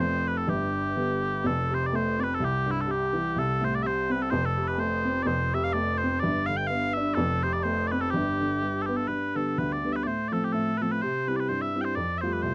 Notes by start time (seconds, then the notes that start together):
Already playing: F1 F2 F3
0.00 A3 C4 C5
0.28 B4
0.37 A4
0.47 G1 G2 G4
0.96 D3 G3 B3
1.44 F1 F2 A4
1.70 C3 C5
1.86 D5
1.93 A3 C5
2.19 C4 D5
2.24 B4
2.34 A4
2.40 C2
2.45 G4
2.66 G2
2.71 E4
2.81 A4
2.87 C3
2.91 G4
3.13 E3
3.36 C2 A4
3.61 A2 C5
3.75 D5
3.83 C3 E5
3.87 C5
4.09 C4 B4
4.22 A4
4.30 F1 F2 C5
4.45 A4
4.58 C3
4.68 B4
4.78 A3 C5
5.05 C4
5.23 F1 F2 D5
5.27 C5
5.54 C3 E5
5.64 F5
5.73 A3 D5
5.98 C5
6.03 C4
6.20 G1 G2 D5
6.46 D3 F5
6.57 G5
6.67 B3 F5
6.94 D4 E5
7.14 F1 F2 A4
7.43 C3 C5
7.53 D5
7.63 A3 C5
7.88 D5
7.92 C4 B4
8.01 A4
8.11 G1 G2 G4
8.41 D3
8.62 G3
8.82 A4
8.86 B3 G4
8.97 A4
9.07 G2 B4
9.35 D3 G3 B3 A4
9.47 A4
9.58 D2 B4
9.72 D5
9.85 D3 G3 B3
9.92 B4 E5
10.03 A2 D5
10.07 C5
10.28 F3 A3 D5
10.33 C4 A4
10.45 G4
10.53 A2 A4
10.77 F3 B4
10.82 A3 C4 A4
10.91 B4
11.02 C3 C5
11.27 G3 C4 E4 B4
11.36 B4 D5
11.48 G2 C5
11.61 E5
11.75 G3 C4 E4
11.81 C5 G5
11.95 F2 D5
12.18 C5 E5
12.23 G3 A3 F4
12.33 B4
12.42 C2 C5